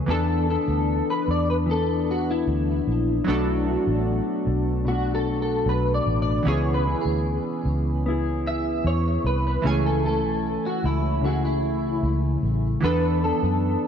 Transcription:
Already playing: E3 A3
0.06 E2 E3 B3 D4 A4
0.10 A4
0.48 B3 D4 A4
0.68 D2
1.10 B4
1.28 E2 D5
1.50 B4
1.66 E3 B3
1.71 D4 A4
2.11 F#4
2.31 E4
2.48 D2
2.87 A#1
3.24 B1 B2 F#3 A3 B3 D4
3.28 D4 F#4 A4
3.67 A3 D4 F#4
3.87 A1
4.47 B1
4.85 B2 A3 F#4
4.90 D4 F#4
5.15 A4
5.42 A4
5.66 B1 B4
5.94 D5
6.06 A1
6.22 D5
6.43 C#2 C#3 E3 B3 C#4
6.47 E4 G#4 C#5
6.74 B4
6.85 B3 E4 G#4
7.01 G#4
7.05 D2
7.65 C#2
8.06 B3 E4
8.10 G#4
8.47 E5
8.85 E2 C#5
9.24 C2 B4
9.47 B4
9.62 C#2 C#3 E3 A3 C#4 E4
9.66 G#4 G#5
9.86 A4
10.05 A3 E4 A4
10.24 B1
10.66 F#4
10.84 C#2 E4
11.22 C#3 A3 F#4
11.26 E4 G#4
11.45 E4
12.03 C#2
12.43 A1
12.80 E2 E3 B3 D4 B4
12.85 A4
13.22 B3 D4 A4
13.43 F#2

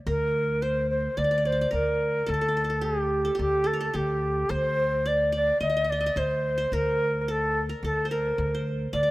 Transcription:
0.07 D2 A#4
0.62 C5
0.90 C5
1.17 D2 D5
1.24 D5
1.31 D5
1.38 D5
1.45 C5 D5
1.52 D5
1.61 D5
1.71 D2 A#4
2.27 D2 A4
2.34 A4
2.41 A4
2.48 A4
2.57 A4
2.64 A4
2.70 A4
2.81 G4
3.25 A4
3.35 G4
3.39 D2 G4
3.64 A4
3.73 A#4
3.81 A4
3.94 D2 G4
4.49 D2 C5
5.06 D5
5.32 D5
5.61 D2 D#5
5.70 D#5
5.77 D#5
5.84 D#5
5.90 D5 D#5
6.01 D#5
6.06 D#5
6.16 D2 C5
6.58 C5
6.72 D2 A#4
7.21 A#4
7.28 A4
7.69 A#4
7.83 D2 A4
8.05 C5
8.10 A#4
8.38 D2
8.55 C5
8.93 D2 D5
9.03 D5

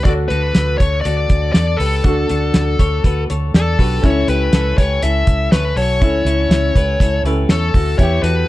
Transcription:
0.03 D2 D4 F#4 A4 D5, kick, closed hi-hat
0.28 D2 F#4 A4 B4, closed hi-hat
0.55 D2 F#4 B4, snare, closed hi-hat
0.78 D2 A4 C#5, kick, closed hi-hat
1.01 D5, closed hi-hat
1.05 D2 F#4 A4
1.30 D2, kick, closed hi-hat
1.52 E2 A4 D5, snare, closed hi-hat
1.77 C#2 G4 A4 B4, open hi-hat
2.04 D2 D4 F#4, kick, closed hi-hat
2.08 A4
2.29 D2 D4 F#4, closed hi-hat
2.54 D2, snare, closed hi-hat
2.79 D2 A4 C#5, kick, closed hi-hat
3.04 D2 F#4 B4, kick, closed hi-hat
3.30 D2 A4 C#5, closed hi-hat
3.54 E2 A4 D5, snare, closed hi-hat
3.78 B1 D4 F#4 G4 A4 B4, kick, open hi-hat
4.02 C#2 C#4 E4 A4 C#5, kick, closed hi-hat
4.28 C#2 E4 G4 B4, closed hi-hat
4.53 C#2 E4 A4, snare, closed hi-hat
4.78 C#2 G4 B4 C#5, kick, closed hi-hat
5.02 C#2 E4 A4 E5, closed hi-hat
5.27 C#2, kick, closed hi-hat
5.52 D2 A4 B4 C#5, snare, closed hi-hat
5.76 B1 F#4 A4 C#5, open hi-hat
6.00 C#2 C#4 E4 A4, kick, closed hi-hat
6.25 C#2 C#4 E4, closed hi-hat
6.49 C#2, snare, closed hi-hat
6.76 C#2 G4 B4, kick, closed hi-hat
7.00 C#2 E4 A4, kick, closed hi-hat
7.23 C#2 C#4 E4 G4 A4 B4, closed hi-hat
7.49 E2 A4 C#5, snare, closed hi-hat
7.74 D2 F#4 A4, kick, open hi-hat
7.98 E2 B3 E4 G4 C#5, kick, closed hi-hat
8.23 E2 F#4 A4 B4, closed hi-hat

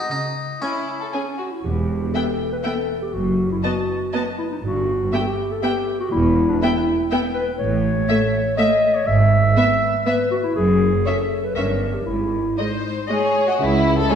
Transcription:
0.00 D#4
0.11 C#3 D#4
0.61 C#4 E4 G#5
1.00 A4
1.12 C#4 G#4 G#5
1.38 F#4
1.51 E4
1.64 E1 E2 G4
2.14 B3 A4 E5 G5
2.52 B4
2.64 B3 A4 E5 G5
3.02 G4
3.14 F#1 F#2 F#4
3.52 E4
3.63 B3 F#4 D#5 A5
4.13 B3 D#5 A5
4.38 E4
4.52 D#4
4.63 G1 G2 F#4
5.12 B3 G4 E5 G5
5.21 A4
5.27 G4
5.52 A4
5.62 B3 G4 E5 G5
6.00 F#4
6.12 E1 E2 E4
6.49 D4
6.61 B3 E4 E5 G5
7.11 B3 E5 G5
7.34 B4
7.59 A1 A2 C#5
8.09 A3 E5
8.57 A3 D#5 E5
8.95 C#5
9.07 G#1 G#2 E5
9.57 B3 E5
10.05 B3 B4 E5
10.31 F#4
10.44 E4
10.55 F#1 F#2 G#4
11.05 C#4 A4 C#5 E5
11.45 B4
11.55 G1 G2 C#4 A#4 C#5 E5
11.94 G4
12.06 G#1 G#2 E4
12.57 G#3 D#4 C5 D#5
13.08 G#3 G#4 C#5 D#5 G#5
13.47 F#4 D#5 F#5
13.59 C#2 G#3 C#4 E4 E5
13.96 A4 A5
14.09 G#3 G#4 C#5 G#5

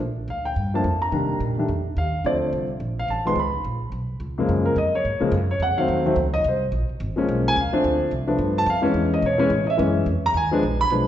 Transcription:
0.00 A#1
0.28 D2 F5
0.45 G5
0.56 G2
0.74 F3 A3 A#3 D4 A5
0.84 F2
1.02 A#5
1.12 C3 D#3 G3 A#3 D4
1.40 A#2
1.58 D#3 G3 A3 D4
1.68 F2
1.97 D#2 F5
2.24 D2 D3 F3 A3 C4 D5
2.53 C2
2.80 A#1
2.99 F5
3.08 A1 A5
3.25 D#3 F3 G#3 B3 C6
3.35 C#2 B5
3.65 A#1
3.92 B1
4.20 C#2
4.38 F#2 C#3 F3 G#3 A#3
4.49 F#2
4.66 A#4
4.76 F2 D#5
4.95 C#5
5.05 G#2
5.20 C#3 F3 G#3 A#3, muted upright bass stroke
5.32 F#2
5.51 C#5
5.60 F2 F#5
5.78 D#3 F#3 A3 C4 F5
5.88 D#2
6.05 D#3 F#3 A3 C4
6.16 C#2
6.34 D#5
6.44 C2 C5
6.72 A#1
6.89 muted upright bass stroke
7.00 G#1
7.16 F3 G#3 A#3 C#4, muted upright bass stroke
7.29 B1
7.48 G#5
7.56 C#2
7.61 F5
7.73 F3 A3 C4 D4, muted upright bass stroke
7.84 D2
8.11 C2
8.27 F3 A3 B3 D4
8.39 G2
8.58 A5
8.66 F2 F5
8.82 E3 G#3 B3 C#4
8.94 E2
9.14 D#5
9.22 B2 C#5
9.38 E3 G#3 B3 C#4
9.50 A2
9.70 E5
9.77 F#2 E3 G#3 B3 C#4
10.06 F2
10.26 A#5
10.34 D#2 G#5
10.51 F3 G#3 B3 D4
10.63 A#1
10.81 B5
10.90 B1 F3 G#3 B3 D4

